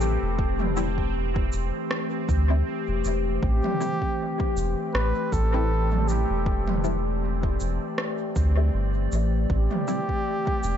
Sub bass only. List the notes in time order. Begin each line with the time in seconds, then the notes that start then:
Already playing: A1
0.22 E1
1.53 E1
2.29 D2
2.88 E1
3.05 E1
3.43 A1
4.56 E1
4.94 A1
5.32 A1
6.30 E1
7.60 E1
8.36 D2
8.74 G1
9.12 A1
9.50 A1
10.64 E1